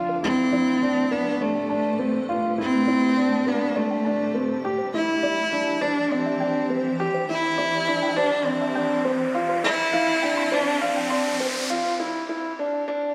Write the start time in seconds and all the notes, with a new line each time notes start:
Already playing: A3 D4 F4 A4 E5
0.08 G4 B4
0.22 C4 E4 B4
0.52 E4 D5
0.82 D4 G5
0.96 A5
1.11 B3 D4 B4
1.41 A3 D4 D5
1.55 G5
1.69 D4 A5
1.99 C4 B4
2.29 F4
2.43 B4
2.58 C4 E4
2.88 E4 D5
3.17 D4 G5
3.32 A5
3.46 B3 D4 B4
3.75 A3 D4 D5
3.90 G5
4.05 D4 A5
4.34 C4 B4
4.64 E3 G4, riser
4.78 C5
4.94 E4
5.23 E4 D5
5.43 C5
5.52 D4 E5
5.67 G5
5.81 D4 C5
6.11 C4 D4 D5
6.26 E5
6.40 D4 G5
6.70 C4 C5
7.00 G4
7.14 C5
7.29 E4
7.58 E4 D5
7.87 D4 E5
8.02 G5
8.16 D4 C5
8.45 C4 D4 D5
8.61 E5
8.75 D4 G5
9.05 C4 C5
9.34 F3 F4
9.47 C4 C5
9.64 E4
9.93 E4 F5
10.23 D4 G5
10.37 C6
10.52 D4 C5
10.81 C4 D4 F5
10.96 G5
11.10 D4 C6
11.40 C4 C5
11.70 F4
12.00 E4
12.29 E4
12.59 D4
12.88 D4